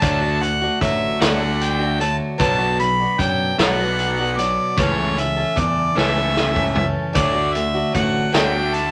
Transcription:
Already playing: harmonica A5
0.00 picked electric bass D2, steel-string acoustic guitar D3 F#3 A3 D4 F#4, kick, closed hi-hat
0.21 steel-string acoustic guitar A3 D4 F#4
0.41 overdriven electric guitar D3 A3, harmonica F#5, closed hi-hat
0.61 steel-string acoustic guitar A3 D4 F#4
0.81 picked electric bass A1, overdriven electric guitar D3, steel-string acoustic guitar F#3 A3 D4 F#4, harmonica E5, kick, closed hi-hat
1.20 picked electric bass D2, steel-string acoustic guitar D3 F#3 A3 D4 F#4, harmonica F#5, snare, closed hi-hat
1.39 steel-string acoustic guitar A3 D4 F#4
1.61 harmonica G5, closed hi-hat
1.79 steel-string acoustic guitar A3 D4 F#4
1.98 overdriven electric guitar D3, steel-string acoustic guitar F#3 A3 D4 F#4, harmonica A5, closed hi-hat
2.38 picked electric bass B1, steel-string acoustic guitar B2 F#3 B3 D4 F#4, harmonica A5, kick, closed hi-hat
2.59 steel-string acoustic guitar B3 D4 F#4
2.80 overdriven electric guitar B2 F#3, harmonica B5, closed hi-hat
2.99 steel-string acoustic guitar B3 D4 F#4
3.19 picked electric bass F#2, overdriven electric guitar B2, steel-string acoustic guitar F#3 B3 D4, harmonica G5, kick, closed hi-hat
3.58 picked electric bass B1, steel-string acoustic guitar B2 F#3 B3 D4 F#4, harmonica F#5, snare, closed hi-hat
3.79 steel-string acoustic guitar B3 D4 F#4
3.99 closed hi-hat
4.19 steel-string acoustic guitar B3 D4 F#4
4.38 overdriven electric guitar B2, steel-string acoustic guitar F#3 B3 D4 F#4, harmonica D5, closed hi-hat
4.78 picked electric bass C#2, steel-string acoustic guitar C#3 E3 A3 C#4 A4, harmonica C#5, kick, closed hi-hat
4.98 steel-string acoustic guitar A3 C#4 A4
5.16 overdriven electric guitar C#3 E3, harmonica E5, closed hi-hat
5.37 steel-string acoustic guitar A3 C#4 A4
5.56 picked electric bass E2, overdriven electric guitar C#3, steel-string acoustic guitar E3 A3 A4, harmonica D5, kick, closed hi-hat
5.96 picked electric bass C#2, steel-string acoustic guitar C#3 E3 A3 C#4 A4, harmonica E5, snare
6.15 steel-string acoustic guitar A3 C#4 A4
6.37 snare
6.54 steel-string acoustic guitar A3 C#4 A4, kick
6.73 overdriven electric guitar C#3, steel-string acoustic guitar E3 A3 C#4 A4, floor tom
7.13 picked electric bass D2, steel-string acoustic guitar D3 F#3 A3 D4 F#4, harmonica D5, kick, closed hi-hat
7.32 steel-string acoustic guitar A3 D4 F#4
7.53 overdriven electric guitar D3 A3, harmonica E5, closed hi-hat
7.74 steel-string acoustic guitar A3 D4 F#4
7.92 picked electric bass A1, steel-string acoustic guitar F#3 A3 D4, harmonica F#5, kick, closed hi-hat
7.96 overdriven electric guitar D3, steel-string acoustic guitar F#4
8.32 picked electric bass D2, steel-string acoustic guitar D3 F#3 A3 D4 F#4, harmonica G5, snare, closed hi-hat
8.52 steel-string acoustic guitar A3 D4 F#4
8.74 harmonica A5, closed hi-hat

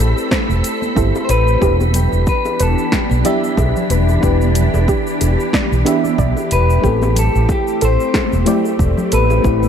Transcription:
Already playing: fm electric piano A3 C4 E4 G4 B4 D5, string machine A3 C4 A4, synth texture B5
0.00 fretless electric bass A1
0.18 shaker
0.31 synth arpeggio sound C5, kick, snare, shaker
0.49 fretless electric bass E1, high bongo, shaker
0.64 closed hi-hat, shaker
0.82 high conga, shaker
0.95 fretless electric bass G1, fm electric piano A3 C4 E4 G4 C5, synth arpeggio sound A4, kick, shaker
1.15 high bongo, shaker
1.25 clean electric guitar C5
1.29 fretless electric bass A1, clean electric guitar B4, synth arpeggio sound C5, closed hi-hat, shaker
1.48 shaker
1.59 fretless electric bass E1, string machine E3 D4 G4, fm electric piano B3 D4 E4 G4, synth arpeggio sound G4, kick, shaker
1.64 fm electric piano B4
1.81 high bongo, high conga, shaker
1.94 clean electric guitar G4, closed hi-hat, low conga, shaker
2.13 fretless electric bass E1, shaker
2.27 clean electric guitar B4, kick, shaker
2.45 high bongo, shaker
2.60 fretless electric bass E1, clean electric guitar A4, synth arpeggio sound B4, closed hi-hat, shaker
2.78 shaker
2.92 clean electric guitar G4, kick, snare, high bongo, shaker
3.10 fretless electric bass B1, high conga, shaker
3.24 fm electric piano B3 D4 E4 G4 E5, clean electric guitar G4, synth arpeggio sound D5, closed hi-hat, low conga, shaker
3.44 shaker
3.57 fretless electric bass B1, kick, high bongo, shaker
3.76 low conga, shaker
3.90 fretless electric bass E1, synth arpeggio sound B4, closed hi-hat, high conga, shaker
4.09 high bongo, shaker
4.20 fretless electric bass E1, fm electric piano B3 D4 E4 G4, kick, shaker
4.25 fm electric piano B4
4.41 high conga, shaker
4.55 closed hi-hat, low conga, shaker
4.74 fretless electric bass E1, high bongo, shaker
4.88 synth arpeggio sound G4, kick, shaker
5.07 shaker
5.21 fretless electric bass E1, closed hi-hat, high bongo, shaker
5.40 shaker
5.53 synth arpeggio sound D5, kick, snare, shaker
5.72 fretless electric bass B1, shaker
5.85 fm electric piano B3 D4 E4 G4 E5, closed hi-hat, high bongo, shaker
6.05 high conga, shaker
6.18 fretless electric bass B1, synth arpeggio sound D5, kick, shaker
6.37 high bongo, shaker
6.51 fretless electric bass E1, clean electric guitar B4, closed hi-hat, shaker
6.70 shaker
6.82 fretless electric bass A1, fm electric piano A3 C4 E4 G4, string machine A3 C4, synth arpeggio sound G4, kick, shaker
6.86 fm electric piano A4
7.02 high bongo, high conga, shaker
7.16 clean electric guitar A4, closed hi-hat, low conga, shaker
7.35 fretless electric bass A1, shaker
7.49 clean electric guitar G4, kick, high bongo, shaker
7.68 shaker
7.81 fretless electric bass A1, synth arpeggio sound A4, clean electric guitar C5, closed hi-hat, shaker
8.00 shaker
8.14 kick, snare, high bongo, shaker
8.32 fretless electric bass E1, high conga, shaker
8.45 fm electric piano A3 C4 E4 G4 D5, synth arpeggio sound C5, closed hi-hat, low conga, shaker
8.65 high bongo, shaker
8.79 fretless electric bass E1, kick, shaker
8.97 low conga, shaker
9.12 fretless electric bass A1, synth arpeggio sound A4, clean electric guitar B4, closed hi-hat, high conga, shaker
9.30 high bongo, shaker
9.42 fretless electric bass A1, fm electric piano A3 C4 E4 G4, kick, shaker
9.47 fm electric piano B4
9.63 high conga, shaker

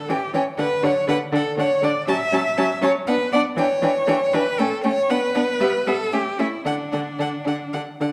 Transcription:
Already playing: cello A4
0.09 viola E3, violin C#4 G5, cello G4
0.34 viola E3, violin C#4 G5, cello C#5
0.57 viola D3, violin D4 F#5, cello B4
0.83 viola D3, violin D4 F#5, cello C#5
1.08 viola D3, violin D4 F#5, cello B4
1.32 viola D3, violin D4 F#5, cello A4
1.58 viola D3, violin D4 F#5, cello C#5
1.82 viola D3, violin D4 F#5, cello D5
2.08 viola F#3, violin C#4 A5, cello E5
2.32 viola F#3, violin C#4 A5
2.58 viola F#3, violin C#4 A5
2.82 viola F#3, violin C#4 A5, cello C#5
3.07 viola B3, violin D4 F#5, cello B4
3.33 viola B3, violin D4 F#5, cello D5
3.57 viola E3, violin D4 G5, cello C#5
3.82 viola E3, violin D4 G5
4.07 viola E3, violin D4 G5
4.33 viola E3, violin D4 G5, cello B4
4.59 viola A3, violin C#4 G5, cello A4
4.84 viola A3, violin C#4 G5, cello C#5
5.09 viola B3, violin D4 F#5, cello B4
5.35 viola B3, violin D4 F#5
5.60 viola G3, violin B3 E5
5.86 viola G3, violin B3 E5, cello A4
6.12 viola A3, violin C#4 E5, cello G4
6.39 viola A3, violin C#4 E5, cello E4
6.65 viola D3, violin D4 F#5, cello D4
6.92 viola D3, violin D4 F#5
7.19 viola D3, violin D4 F#5
7.45 viola D3, violin D4 F#5
7.73 viola D3, violin D4 F#5
8.01 viola D3, violin D4 F#5

